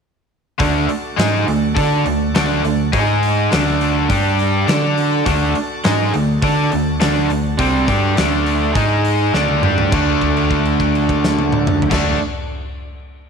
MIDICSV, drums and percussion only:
0, 0, Header, 1, 2, 480
1, 0, Start_track
1, 0, Key_signature, 2, "major"
1, 0, Tempo, 583090
1, 492, Time_signature, 4, 2, 24, 8
1, 10945, End_track
2, 0, Start_track
2, 0, Title_t, "Drums"
2, 490, Note_on_c, 9, 46, 70
2, 494, Note_on_c, 9, 36, 97
2, 573, Note_off_c, 9, 46, 0
2, 576, Note_off_c, 9, 36, 0
2, 733, Note_on_c, 9, 46, 50
2, 816, Note_off_c, 9, 46, 0
2, 976, Note_on_c, 9, 46, 70
2, 985, Note_on_c, 9, 38, 107
2, 1059, Note_off_c, 9, 46, 0
2, 1067, Note_off_c, 9, 38, 0
2, 1219, Note_on_c, 9, 46, 60
2, 1301, Note_off_c, 9, 46, 0
2, 1453, Note_on_c, 9, 36, 97
2, 1454, Note_on_c, 9, 46, 77
2, 1536, Note_off_c, 9, 36, 0
2, 1536, Note_off_c, 9, 46, 0
2, 1694, Note_on_c, 9, 46, 58
2, 1776, Note_off_c, 9, 46, 0
2, 1933, Note_on_c, 9, 46, 77
2, 1942, Note_on_c, 9, 38, 111
2, 2016, Note_off_c, 9, 46, 0
2, 2024, Note_off_c, 9, 38, 0
2, 2178, Note_on_c, 9, 46, 57
2, 2260, Note_off_c, 9, 46, 0
2, 2414, Note_on_c, 9, 36, 96
2, 2418, Note_on_c, 9, 46, 74
2, 2497, Note_off_c, 9, 36, 0
2, 2500, Note_off_c, 9, 46, 0
2, 2656, Note_on_c, 9, 46, 54
2, 2739, Note_off_c, 9, 46, 0
2, 2897, Note_on_c, 9, 46, 70
2, 2905, Note_on_c, 9, 38, 104
2, 2979, Note_off_c, 9, 46, 0
2, 2987, Note_off_c, 9, 38, 0
2, 3136, Note_on_c, 9, 46, 53
2, 3218, Note_off_c, 9, 46, 0
2, 3374, Note_on_c, 9, 36, 98
2, 3377, Note_on_c, 9, 46, 70
2, 3456, Note_off_c, 9, 36, 0
2, 3459, Note_off_c, 9, 46, 0
2, 3616, Note_on_c, 9, 46, 51
2, 3698, Note_off_c, 9, 46, 0
2, 3855, Note_on_c, 9, 46, 72
2, 3863, Note_on_c, 9, 38, 117
2, 3937, Note_off_c, 9, 46, 0
2, 3946, Note_off_c, 9, 38, 0
2, 4096, Note_on_c, 9, 46, 54
2, 4178, Note_off_c, 9, 46, 0
2, 4332, Note_on_c, 9, 36, 105
2, 4332, Note_on_c, 9, 46, 69
2, 4414, Note_off_c, 9, 46, 0
2, 4415, Note_off_c, 9, 36, 0
2, 4572, Note_on_c, 9, 46, 53
2, 4654, Note_off_c, 9, 46, 0
2, 4808, Note_on_c, 9, 46, 69
2, 4816, Note_on_c, 9, 38, 104
2, 4890, Note_off_c, 9, 46, 0
2, 4898, Note_off_c, 9, 38, 0
2, 5051, Note_on_c, 9, 46, 54
2, 5133, Note_off_c, 9, 46, 0
2, 5287, Note_on_c, 9, 46, 70
2, 5288, Note_on_c, 9, 36, 99
2, 5369, Note_off_c, 9, 46, 0
2, 5371, Note_off_c, 9, 36, 0
2, 5530, Note_on_c, 9, 46, 56
2, 5612, Note_off_c, 9, 46, 0
2, 5767, Note_on_c, 9, 46, 77
2, 5775, Note_on_c, 9, 38, 112
2, 5849, Note_off_c, 9, 46, 0
2, 5858, Note_off_c, 9, 38, 0
2, 6011, Note_on_c, 9, 46, 55
2, 6093, Note_off_c, 9, 46, 0
2, 6246, Note_on_c, 9, 36, 105
2, 6247, Note_on_c, 9, 46, 79
2, 6328, Note_off_c, 9, 36, 0
2, 6329, Note_off_c, 9, 46, 0
2, 6487, Note_on_c, 9, 36, 91
2, 6494, Note_on_c, 9, 46, 54
2, 6569, Note_off_c, 9, 36, 0
2, 6576, Note_off_c, 9, 46, 0
2, 6727, Note_on_c, 9, 46, 69
2, 6736, Note_on_c, 9, 38, 100
2, 6810, Note_off_c, 9, 46, 0
2, 6818, Note_off_c, 9, 38, 0
2, 6968, Note_on_c, 9, 46, 57
2, 7051, Note_off_c, 9, 46, 0
2, 7205, Note_on_c, 9, 46, 70
2, 7206, Note_on_c, 9, 36, 101
2, 7288, Note_off_c, 9, 46, 0
2, 7289, Note_off_c, 9, 36, 0
2, 7447, Note_on_c, 9, 46, 54
2, 7529, Note_off_c, 9, 46, 0
2, 7691, Note_on_c, 9, 38, 62
2, 7773, Note_off_c, 9, 38, 0
2, 7807, Note_on_c, 9, 48, 59
2, 7889, Note_off_c, 9, 48, 0
2, 7928, Note_on_c, 9, 45, 88
2, 8010, Note_off_c, 9, 45, 0
2, 8050, Note_on_c, 9, 43, 82
2, 8133, Note_off_c, 9, 43, 0
2, 8169, Note_on_c, 9, 36, 108
2, 8169, Note_on_c, 9, 49, 80
2, 8251, Note_off_c, 9, 36, 0
2, 8252, Note_off_c, 9, 49, 0
2, 8408, Note_on_c, 9, 36, 57
2, 8413, Note_on_c, 9, 49, 41
2, 8491, Note_off_c, 9, 36, 0
2, 8495, Note_off_c, 9, 49, 0
2, 8533, Note_on_c, 9, 57, 47
2, 8616, Note_off_c, 9, 57, 0
2, 8648, Note_on_c, 9, 36, 63
2, 8648, Note_on_c, 9, 49, 41
2, 8730, Note_off_c, 9, 49, 0
2, 8731, Note_off_c, 9, 36, 0
2, 8769, Note_on_c, 9, 57, 52
2, 8852, Note_off_c, 9, 57, 0
2, 8889, Note_on_c, 9, 36, 59
2, 8893, Note_on_c, 9, 49, 49
2, 8972, Note_off_c, 9, 36, 0
2, 8975, Note_off_c, 9, 49, 0
2, 9014, Note_on_c, 9, 57, 50
2, 9097, Note_off_c, 9, 57, 0
2, 9130, Note_on_c, 9, 36, 63
2, 9133, Note_on_c, 9, 49, 48
2, 9213, Note_off_c, 9, 36, 0
2, 9215, Note_off_c, 9, 49, 0
2, 9256, Note_on_c, 9, 38, 94
2, 9339, Note_off_c, 9, 38, 0
2, 9372, Note_on_c, 9, 48, 85
2, 9455, Note_off_c, 9, 48, 0
2, 9487, Note_on_c, 9, 47, 92
2, 9569, Note_off_c, 9, 47, 0
2, 9608, Note_on_c, 9, 45, 101
2, 9690, Note_off_c, 9, 45, 0
2, 9731, Note_on_c, 9, 43, 95
2, 9805, Note_on_c, 9, 36, 102
2, 9808, Note_on_c, 9, 49, 100
2, 9814, Note_off_c, 9, 43, 0
2, 9816, Note_on_c, 9, 38, 90
2, 9887, Note_off_c, 9, 36, 0
2, 9891, Note_off_c, 9, 49, 0
2, 9899, Note_off_c, 9, 38, 0
2, 10945, End_track
0, 0, End_of_file